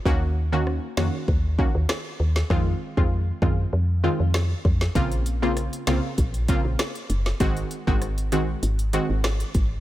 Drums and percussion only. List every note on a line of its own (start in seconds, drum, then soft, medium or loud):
0.05 kick loud
0.67 cross-stick medium
0.97 cross-stick medium
0.97 snare loud
1.28 kick medium
1.59 kick medium
1.89 cross-stick medium
1.89 snare loud
2.36 snare medium
2.50 kick loud
2.97 kick medium
3.42 kick medium
4.34 cross-stick medium
4.34 snare loud
4.65 kick medium
4.81 snare medium
4.95 kick loud
4.95 closed hi-hat medium
5.12 closed hi-hat medium
5.26 closed hi-hat medium
5.57 cross-stick medium
5.57 closed hi-hat medium
5.73 closed hi-hat medium
5.87 cross-stick medium
5.87 snare loud
5.87 closed hi-hat medium
6.18 kick medium
6.18 closed hi-hat medium
6.34 closed hi-hat medium
6.48 kick loud
6.48 closed hi-hat medium
6.79 cross-stick medium
6.79 snare loud
6.79 closed hi-hat medium
6.95 closed hi-hat soft
7.10 closed hi-hat medium
7.26 snare medium
7.40 kick loud
7.40 closed hi-hat medium
7.57 closed hi-hat medium
7.71 closed hi-hat medium
7.87 kick medium
8.02 cross-stick medium
8.02 closed hi-hat medium
8.18 closed hi-hat medium
8.32 closed hi-hat medium
8.63 closed hi-hat medium
8.79 closed hi-hat medium
8.93 closed hi-hat medium
9.24 cross-stick medium
9.24 snare loud
9.24 closed hi-hat medium
9.40 closed hi-hat medium
9.54 kick medium
9.54 closed hi-hat medium